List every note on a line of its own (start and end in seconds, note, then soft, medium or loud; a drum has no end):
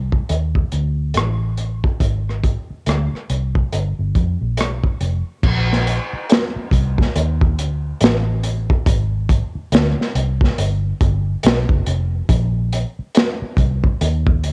0.00 0.20 C2 medium
0.12 kick medium
0.29 0.63 D#2 medium
0.29 closed hi-hat medium
0.55 kick medium
0.72 1.17 D2 medium
0.72 closed hi-hat medium
1.14 1.82 A1 medium
1.14 cross-stick medium
1.14 closed hi-hat medium
1.58 closed hi-hat soft
1.84 kick medium
2.00 2.55 G#1 medium
2.00 kick medium
2.00 closed hi-hat medium
2.29 cross-stick soft
2.44 kick medium
2.44 closed hi-hat medium
2.71 muted fingered electric bass stroke soft
2.86 3.07 D2 medium
2.86 cross-stick medium
2.86 closed hi-hat medium
3.15 cross-stick soft
3.29 3.63 C2 medium
3.29 closed hi-hat medium
3.55 kick medium
3.72 3.93 G1 medium
3.72 closed hi-hat medium
3.99 4.12 G1 medium
4.15 4.36 F2 medium
4.15 kick medium
4.15 closed hi-hat medium
4.41 4.58 A#1 medium
4.57 4.92 B1 medium
4.57 cross-stick medium
4.57 closed hi-hat medium
4.84 kick medium
5.01 5.21 F1 medium
5.01 closed hi-hat medium
5.43 5.98 A#1 loud
5.43 kick loud
5.43 crash medium
5.73 snare soft
5.87 closed hi-hat medium
6.13 muted fingered electric bass stroke soft
6.29 snare loud
6.29 closed hi-hat medium
6.56 muted fingered electric bass stroke soft
6.71 7.06 C2 medium
6.71 kick medium
6.71 closed hi-hat medium
6.98 kick medium
6.98 snare soft
7.16 7.58 D#2 loud
7.16 closed hi-hat medium
7.41 kick medium
7.58 7.92 D2 medium
7.58 closed hi-hat medium
8.00 8.68 A1 medium
8.00 snare loud
8.00 closed hi-hat medium
8.43 closed hi-hat medium
8.70 kick loud
8.86 9.41 G#1 loud
8.86 kick loud
8.86 closed hi-hat loud
9.29 kick loud
9.29 closed hi-hat medium
9.55 muted fingered electric bass stroke soft
9.72 9.93 D2 loud
9.72 snare loud
9.72 closed hi-hat medium
10.01 snare soft
10.15 10.49 C2 medium
10.15 closed hi-hat medium
10.41 kick medium
10.41 snare soft
10.58 10.92 G1 loud
10.58 closed hi-hat medium
11.01 11.35 G1 medium
11.01 kick medium
11.01 closed hi-hat medium
11.43 11.65 B1 loud
11.43 snare loud
11.43 closed hi-hat loud
11.69 11.83 F#1 medium
11.69 kick medium
11.86 12.20 F1 medium
11.86 closed hi-hat medium
12.29 12.83 A#1 loud
12.29 kick loud
12.29 closed hi-hat loud
12.72 closed hi-hat medium
12.99 muted fingered electric bass stroke soft
13.15 snare loud
13.15 closed hi-hat medium
13.42 muted fingered electric bass stroke soft
13.57 13.91 C2 medium
13.57 kick medium
13.57 closed hi-hat medium
13.84 kick medium
14.01 14.44 D#2 loud
14.01 closed hi-hat medium
14.27 kick loud
14.43 14.53 D2 medium
14.43 closed hi-hat medium